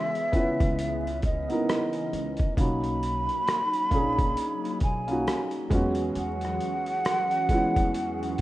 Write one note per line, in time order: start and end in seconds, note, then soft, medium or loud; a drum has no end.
0.00 2.54 C#3 medium
0.00 2.54 E3 medium
0.00 2.54 G#3 medium
0.00 0.23 B3 medium
0.00 2.54 B3 medium
0.00 0.23 C#4 medium
0.00 0.77 C#4 medium
0.00 0.24 E4 medium
0.00 0.25 G#4 medium
0.00 1.20 E5 loud
0.15 closed hi-hat soft
0.32 1.36 B3 medium
0.32 1.36 C#4 medium
0.32 1.37 E4 medium
0.32 kick medium
0.32 closed hi-hat medium
0.36 1.38 B4 loud
0.60 1.46 C#2 medium
0.60 kick medium
0.60 closed hi-hat soft
0.79 2.56 C#4 medium
0.79 closed hi-hat medium
1.07 closed hi-hat soft
1.22 2.54 D#5 medium
1.22 kick medium
1.22 closed hi-hat medium
1.48 2.47 B3 medium
1.48 2.48 D#4 medium
1.48 2.49 E4 medium
1.48 closed hi-hat soft
1.52 2.50 A#4 medium
1.69 cross-stick loud
1.69 closed hi-hat medium
1.93 closed hi-hat soft
2.13 2.38 C#2 medium
2.13 closed hi-hat medium
2.37 kick loud
2.37 closed hi-hat soft
2.57 3.25 B1 medium
2.57 8.41 F#3 medium
2.57 3.80 A#3 medium
2.57 5.68 A#3 medium
2.57 3.81 C#4 medium
2.57 5.68 D#4 medium
2.57 3.82 D#4 medium
2.57 4.78 B5 loud
2.57 kick loud
2.57 closed hi-hat medium
2.61 3.83 F#4 medium
2.84 closed hi-hat soft
3.03 closed hi-hat medium
3.29 closed hi-hat soft
3.47 cross-stick loud
3.47 closed hi-hat medium
3.73 closed hi-hat soft
3.90 4.33 A#1 medium
3.90 4.94 A#3 medium
3.90 4.95 C#4 medium
3.90 4.00 D4 medium
3.90 kick medium
3.90 closed hi-hat medium
3.95 4.96 G#4 medium
4.00 4.98 D#4 medium
4.19 kick medium
4.19 closed hi-hat soft
4.37 closed hi-hat medium
4.65 closed hi-hat soft
4.80 5.23 B1 medium
4.80 5.50 G#5 medium
4.80 kick medium
4.80 closed hi-hat medium
5.07 5.70 A#3 medium
5.07 5.71 C#4 medium
5.07 5.72 D#4 medium
5.07 closed hi-hat soft
5.12 5.73 F#4 medium
5.27 cross-stick loud
5.27 closed hi-hat medium
5.51 closed hi-hat soft
5.70 6.13 E2 loud
5.70 8.41 E3 medium
5.70 7.35 G#3 loud
5.70 7.36 B3 medium
5.70 8.41 C#4 medium
5.70 7.36 C#4 medium
5.70 8.41 F#4 medium
5.70 8.41 G#4 medium
5.70 kick loud
5.70 closed hi-hat medium
5.74 7.37 F#4 loud
5.95 closed hi-hat soft
6.15 6.58 E2 medium
6.15 8.41 F#5 loud
6.15 closed hi-hat medium
6.41 cross-stick soft
6.41 closed hi-hat medium
6.61 closed hi-hat medium
6.86 closed hi-hat soft
7.05 cross-stick loud
7.05 closed hi-hat medium
7.31 closed hi-hat soft
7.49 8.41 G#3 medium
7.49 8.41 B3 medium
7.49 8.41 C#4 medium
7.49 kick medium
7.49 closed hi-hat medium
7.54 8.41 E4 medium
7.76 8.41 E2 medium
7.76 kick medium
7.76 closed hi-hat medium
7.94 closed hi-hat medium
8.23 closed hi-hat soft
8.38 closed hi-hat medium